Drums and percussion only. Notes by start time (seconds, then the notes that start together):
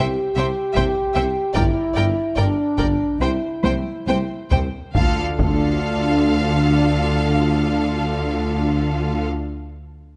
0.77 taiko
1.55 taiko
2.78 taiko
3.64 taiko high
4.08 taiko high
4.51 taiko low
4.95 taiko
5.39 taiko